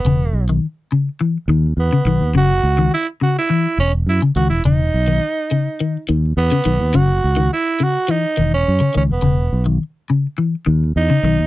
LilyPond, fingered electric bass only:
\new Staff \with { instrumentName = "Fingered electric bass" } { \clef bass \time 4/4 \key e \lydian \tempo 4 = 104 e,,8 b,,8 r4. dis,8 e,16 r16 b,,16 dis,16 | fis,,8 cis,8 r4. e,,8 fis,16 r16 cis,16 e,,16 | e,,8 b,,8 r4. dis,8 e,16 r16 b,,16 dis,16 | fis,,8 cis,8 r4. e,,8 fis,16 r16 cis,16 e,,16 |
e,,8 b,,8 r4. dis,8 e,16 r16 b,,16 dis,16 | }